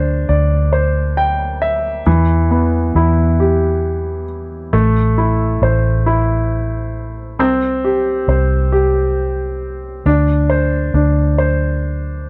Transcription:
Already playing: D2 D4 C5
0.29 D2 D5
0.73 C5
1.17 G5
1.62 E5
2.06 E2 E3
2.51 B3
2.95 E2 E4
3.40 G4
4.73 A1 A3
5.18 E4
5.62 A1 C5
6.06 E4
7.39 C2 C4
7.84 G4
8.28 C2 C5
8.72 G4
10.06 D2 D4
10.50 C5
10.94 D2 D4
11.38 C5

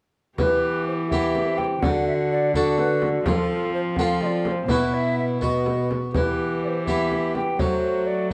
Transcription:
0.37 E3 B3 G4 B4, frame drum
0.87 C5
1.10 B3 E4 G4 E5, frame drum
1.35 frame drum
1.47 C4
1.58 G5, frame drum
1.82 D3 D4 F#4 F#5, frame drum
2.07 E5
2.32 D5
2.54 D4 F#4 A4 D5, frame drum
2.78 B4, frame drum
3.02 A4, frame drum
3.26 F3 C4 F4 A4, frame drum
3.74 C5
3.96 C4 F4 A4 F#5, frame drum
4.02 F5
4.21 D#5, frame drum
4.26 D5
4.45 D5, frame drum
4.52 C5
4.68 B2 B3 E4 F#4 B4, frame drum
4.94 E5
5.19 E5
5.40 B3 F#4 D#5, frame drum
5.66 frame drum
5.91 frame drum
6.13 E3 B3 G4 B4, frame drum
6.64 D5
6.68 C5
6.87 B3 E4 G4 E5, frame drum
7.12 frame drum
7.35 G5, frame drum
7.59 F#3 A3 F#4 C5, frame drum
8.07 D5

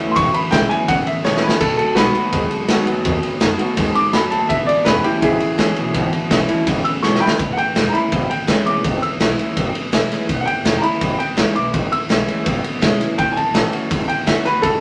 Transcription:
Already playing: E2 A2 E3 A3 C#4 F#4
0.11 E2 C6
0.16 E1 B2 C#6, kick, ride
0.34 B5, muted upright bass stroke, ride
0.51 B1 E2 C#3 E3 G#3 C#4 E4 G5, kick, snare, ride
0.69 E2 B2 C#4 E4 G#5, muted upright bass stroke, ride
0.88 G#1 E2 B2 C#3 F#5, kick, snare, ride
1.06 E5, muted upright bass stroke, ride
1.24 B1 E2 B2 E3 G#3 C#4 E4 C#5, snare
1.37 snare
1.42 A1 E2 B2 C#4 E4 B4
1.49 snare
1.60 B1 B2 F#3 A4, kick, crash, ride
1.77 D#2 A4, ride
1.95 B1 B2 D#3 G#3 B3 F#4 B4, snare, ride
2.14 B2 F#3 B3 F#4, muted upright bass stroke, ride
2.32 D#2 F#2 B2 G#3, kick, snare, ride
2.51 ride
2.68 D#2 B2 D#3 F#3 G#3 B3 F#4, snare, ride
2.86 F#2 B2 F#3 B3 F#4, ride
3.04 D#2 B2 F#3, kick, ride
3.23 muted upright bass stroke, ride
3.40 F#2 B2 D#3 G#3 B3 F#4, kick, snare, ride
3.58 B2 F#3 B3 F#4, muted upright bass stroke, ride
3.77 D#2 G#2 B2 G#3, kick, snare, ride
3.95 D6, muted upright bass stroke, ride
4.13 F#2 B2 F#3 B5, snare, ride
4.31 D#2 B2 F#3 A5, ride
4.49 E1 E2 B2 E5, kick, ride
4.66 G#1 D5, ride
4.85 E1 E2 C#3 E3 G#3 C#4 E4 B4, snare, ride
5.03 E2 B2 C#4 E4 G4, muted upright bass stroke, ride
5.22 G#1 E2 B2 C#3 E4 G#4, kick, ride
5.40 muted upright bass stroke, ride
5.58 G#1 E2 B2 E3 G#3 C#4 E4, snare, ride
5.76 B1 E2 B2 C#4 E4, ride
5.94 G#1 E2 B2, kick, ride
6.13 muted upright bass stroke, ride
6.30 B1 E2 C#3 E3 G#3 C#4 E4, kick, snare, ride
6.48 E2 B2 C#4 E4, ride
6.66 G#1 E2 B2 C#3, kick, snare, ride
6.84 E6, muted upright bass stroke, ride
7.03 B1 E2 B2 E3 G#3 C#4 E4 C#6, snare
7.15 snare
7.20 G#1 E2 B2 C#4 E4 G5 B5
7.27 snare
7.39 E1 E2, kick, ride
7.53 F#5
7.57 G#1 G5, ride
7.75 E1 E3 G#3 C#4 E4, snare, ride
7.89 A#5
7.93 C#4 E4 B5, muted upright bass stroke, ride
8.12 G#1 B2, kick, ride
8.30 G5, muted upright bass stroke, ride
8.47 G#1 E3 G#3 C#4 E4, kick, snare, ride
8.66 B1 D6, ride
8.84 G#1 E2, kick, ride
9.02 E6, muted upright bass stroke, ride
9.20 B1 E3 G#3 C#4 E4, snare, ride
9.39 C#4 E4, ride
9.57 G#1 B2, kick, ride
9.74 muted upright bass stroke, ride
9.92 B1 E3 G#3 C#4 E4, kick, snare, ride
10.11 G#1, snare, ride
10.29 E1 E2, kick, ride
10.41 F#5
10.45 G#1 G5, ride
10.64 E1 E3 G#3 C#4 E4, snare, ride
10.78 A#5
10.82 C#4 E4 B5, muted upright bass stroke, ride
11.01 G#1 B2, kick, ride
11.19 G5, muted upright bass stroke, ride
11.37 G#1 E3 G#3 C#4 E4, kick, snare, ride
11.55 B1 C#4 E4 D6, ride
11.73 G#1 E2, kick, ride
11.91 E6, muted upright bass stroke, ride
12.09 B1 E3 G#3 C#4 E4, snare, ride
12.27 muted upright bass stroke, ride
12.46 G#1 B2, kick, ride
12.64 muted upright bass stroke, ride
12.81 B1 E3 G#3 C#4 E4, kick, snare, ride
13.00 G#1 C#4 E4, snare, ride
13.18 A1 A2 G5, kick, ride
13.32 G#5
13.36 C#2 A5, ride
13.54 A1 E3 A3 C#4 F#4, snare, ride
13.72 C#4 F#4, muted upright bass stroke, ride
13.91 C#2 E2, kick, ride
14.08 G5, muted upright bass stroke, ride
14.27 C#2 E3 A3 C#4 F#4 E5, kick, snare, ride
14.45 E2 C#4 F#4 B4, snare, ride
14.62 C#2 A2 A4, kick, ride

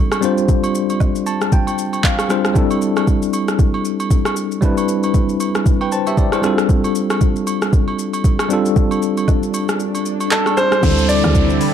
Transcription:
Already playing: G3 C4 D4 F4 A4
0.12 cross-stick, high agogo, shaker
0.21 G3 C4 D4 F4, shaker
0.25 C5
0.38 shaker
0.49 kick, shaker
0.64 high agogo, shaker
0.75 shaker
0.90 high agogo, shaker
1.00 kick, low woodblock, shaker
1.15 shaker
1.26 A5, high agogo, shaker
1.41 cross-stick, shaker
1.52 G5, kick, shaker
1.67 high agogo, shaker
1.78 shaker
1.93 high agogo, shaker
2.04 F5, kick, clap, low woodblock, shaker
2.19 cross-stick, high agogo, shaker
2.29 G3 C4 D4 F4 C5, cross-stick, shaker
2.45 cross-stick, shaker
2.54 G3 C4 D4 E4, kick, shaker
2.58 A4
2.71 high agogo, shaker
2.82 shaker
2.97 cross-stick, high agogo, shaker
3.08 kick, shaker
3.22 shaker
3.33 high agogo, shaker
3.48 cross-stick, shaker
3.59 kick, shaker
3.74 high agogo
3.85 shaker
4.00 high agogo, shaker
4.11 kick, shaker
4.25 cross-stick, high agogo, shaker
4.36 shaker
4.52 shaker
4.61 G3 C4 D4 E4, kick, shaker
4.65 B4
4.77 high agogo, shaker
4.89 shaker
5.03 high agogo, shaker
5.14 kick, shaker
5.29 shaker
5.40 high agogo, shaker
5.55 cross-stick, shaker
5.66 kick, shaker
5.81 B4 G5, high agogo
5.92 C5 A5, shaker
6.07 G4 E5, high agogo, shaker
6.18 D5, kick, shaker
6.32 E4 C5, cross-stick, high agogo, shaker
6.42 G3 C4 D4 F4, cross-stick, shaker
6.46 A4
6.58 cross-stick, shaker
6.69 kick, swell, shaker
6.84 high agogo, shaker
6.95 shaker
7.10 cross-stick, high agogo, shaker
7.21 kick, shaker
7.36 shaker
7.47 high agogo, shaker
7.62 cross-stick, shaker
7.73 kick, shaker
7.88 high agogo
7.99 shaker
8.13 high agogo, shaker
8.24 kick, shaker
8.39 cross-stick, high agogo, shaker
8.49 G3 C4 D4 F4, shaker
8.53 A4
8.66 shaker
8.76 kick, shaker
8.91 high agogo, shaker
9.02 shaker
9.17 high agogo, shaker
9.28 kick, low woodblock, shaker
9.43 shaker
9.54 high agogo, shaker
9.69 cross-stick, shaker
9.80 shaker
9.95 high agogo, shaker
10.06 shaker
10.21 high agogo, shaker
10.31 A4, clap, low woodblock, shaker
10.46 cross-stick, high agogo, shaker
10.57 C5, cross-stick, shaker
10.72 cross-stick, shaker
10.81 D2 D3 G3 C4 D4 E4, kick, crash, downlifter, shaker
10.86 A4
10.98 shaker
11.09 D5, open hi-hat, shaker
11.24 D2, cross-stick, shaker
11.35 kick, shaker
11.50 shaker
11.61 open hi-hat, shaker

